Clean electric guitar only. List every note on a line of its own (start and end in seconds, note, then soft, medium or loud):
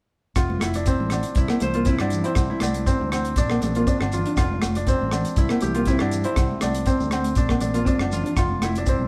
0.60 0.80 A3 medium
0.87 1.06 C4 medium
1.50 1.59 A#3 medium
1.61 1.72 A3 medium
1.75 1.84 A#3 medium
1.86 2.06 C4 medium
2.24 2.34 E4 medium
2.62 2.81 A3 medium
2.88 3.07 C4 medium
3.51 3.60 A#3 medium
3.63 3.73 A3 medium
3.76 3.85 A#3 medium
3.87 4.06 C4 medium
4.27 4.35 D4 medium
4.62 4.81 A3 medium
4.87 5.06 C4 medium
5.50 5.59 A#3 medium
5.62 5.72 A3 medium
5.76 5.85 A#3 medium
5.88 6.07 C4 medium
6.25 6.34 E4 medium
6.62 6.81 A3 medium
6.87 7.06 C4 medium
7.49 7.58 A#3 medium
7.61 7.72 A3 medium
7.74 7.83 A#3 medium
7.85 8.05 C4 medium
8.24 8.33 D4 medium
8.62 8.81 A3 medium
8.87 9.06 C4 medium